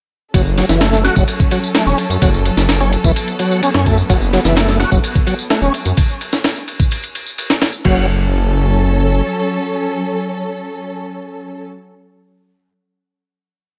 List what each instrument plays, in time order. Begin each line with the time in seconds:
0.33 detuned saw bass F#1, string section F#3 C#4 A4, tonewheel organ F#3, kick, ride, tambourine
0.46 tambourine
0.58 tonewheel organ F#3, snare, ride
0.69 detuned saw bass F#1, tonewheel organ E3, snare, tambourine
0.81 tonewheel organ A3, snare, ride, tambourine
0.92 snare, tambourine
1.05 tonewheel organ F#4, snare, ride
1.16 detuned saw bass F#1, tonewheel organ F#3, kick, tambourine
1.28 ride, tambourine
1.40 kick, tambourine
1.51 tonewheel organ F#3, ride
1.64 tambourine
1.75 tonewheel organ A3, snare, ride, tambourine
1.86 detuned saw bass E1, tonewheel organ C#4, tambourine
1.98 ride
2.10 detuned saw bass F#2, ride, tambourine
2.22 detuned saw bass F#1, tonewheel organ F#3, kick, ride, tambourine
2.34 tambourine
2.45 ride
2.57 detuned saw bass F#1, snare, tambourine
2.69 snare, ride, tambourine
2.81 tonewheel organ C#4, tambourine
2.93 ride
3.04 detuned saw bass F#1, tonewheel organ E3, kick, tambourine
3.15 string section B3, ride, tambourine
3.28 ride, tambourine
3.39 tonewheel organ F#3, ride
3.51 tambourine
3.63 tonewheel organ C#4, ride, tambourine
3.74 detuned saw bass F#2, tonewheel organ C#4, snare, tambourine
3.86 tonewheel organ A3, kick, ride
3.98 tambourine
4.10 detuned saw bass F#1, tonewheel organ F#3, kick, ride, tambourine
4.21 tambourine
4.33 tonewheel organ F#3, snare, ride
4.45 detuned saw bass F#1, tonewheel organ E3, snare, tambourine
4.56 tonewheel organ A3, snare, ride, tambourine
4.68 snare, tambourine
4.80 tonewheel organ F#4, snare, ride
4.92 detuned saw bass F#1, tonewheel organ F#3, kick, tambourine
5.03 ride, tambourine
5.15 kick, tambourine
5.27 tonewheel organ F#3, ride
5.39 tambourine
5.50 tonewheel organ A3, snare, ride, tambourine
5.61 detuned saw bass E1, tonewheel organ C#4, tambourine
5.74 ride
5.85 detuned saw bass F#2, ride, tambourine
5.97 kick, ride, tambourine
6.09 tambourine
6.21 ride
6.32 snare, tambourine
6.44 snare, ride, tambourine
6.56 tambourine
6.68 ride
6.80 kick, tambourine
6.91 ride, tambourine
7.03 ride, tambourine
7.15 ride
7.26 tambourine
7.38 ride, tambourine
7.50 snare, tambourine
7.62 snare, ride
7.73 tambourine
7.84 detuned saw bass F#1, tonewheel organ F#3, string section F#3 C#4 A4, kick, crash